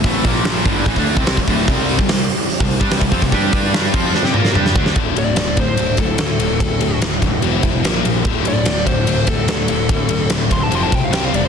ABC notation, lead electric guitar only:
X:1
M:4/4
L:1/16
Q:1/4=146
K:Dm
V:1 name="Lead electric guitar"
z16 | z16 | z16 | z2 d4 c4 A2 A4- |
A4 z12 | z2 d4 c4 A2 A4- | A4 z2 c' a c' a g f g f d z |]